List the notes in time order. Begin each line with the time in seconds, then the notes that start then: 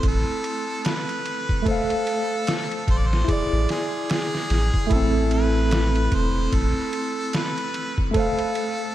Already playing: A3 C4 E4 A4
0.03 A1, kick, ride
0.07 A4
0.44 ride
0.85 B4, snare, ride
1.09 ride
1.26 ride
1.49 kick
1.62 A3 A4, kick
1.66 A4 C5, ride
1.71 F5
1.90 ride
2.07 ride
2.47 snare, ride
2.71 ride
2.88 A1 C5, kick, ride
2.97 D5
3.07 C5
3.13 snare
3.24 E4
3.28 G#4 D5, kick, ride
3.33 D5
3.52 A1
3.69 G#4, snare, ride
4.10 G#4, snare, ride
4.35 snare
4.50 A1, snare, ride
4.74 kick
4.87 A1 A3 E4, kick
4.91 A4, ride
4.95 C4
5.31 B4, ride
5.71 snare, ride
5.96 ride
6.12 E1 C5, kick, ride
6.52 A1 A4, kick, ride
6.93 ride
7.33 B4, snare, ride
7.58 ride
7.74 ride
7.98 kick
8.11 A3 A4, kick, ride
8.16 A4 C5 F5
8.39 ride
8.55 ride